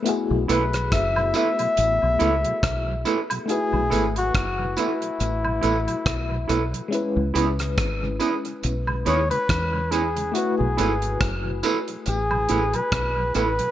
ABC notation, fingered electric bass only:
X:1
M:4/4
L:1/16
Q:"Swing 16ths" 1/4=70
K:Bmix
V:1 name="Fingered electric bass" clef=bass
z B,,, B,,,2 F,,,2 z2 A,,, B,,, C,, z B,,,2 z2 | z B,,, G,,,2 F,,,2 z2 A,,,2 A,,, z B,,,2 B,,, z | z C,, C,,2 G,,,2 z2 B,,,2 D,, z E,,4 | z B,,, G,,,2 F,,,2 z2 A,,,2 A,,, z B,,,2 A,,, z |]